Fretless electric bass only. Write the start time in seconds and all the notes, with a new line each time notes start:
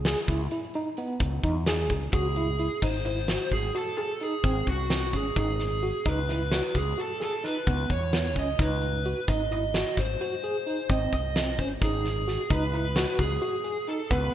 Already playing: C#2
0.28 C#2
1.20 C#2
1.43 E2
1.90 C#2
2.13 C#2
2.82 G#1
3.51 G#1
4.44 G#1
4.67 C2
5.14 G#1
5.37 G#1
6.06 C#2
6.75 C#2
7.67 C#2
7.90 E2
8.36 C#2
8.59 C#2
9.28 G#1
9.97 G#1
10.89 G#1
11.13 C2
11.59 G#1
11.81 G#1
12.50 C#2
13.19 C#2
14.11 C#2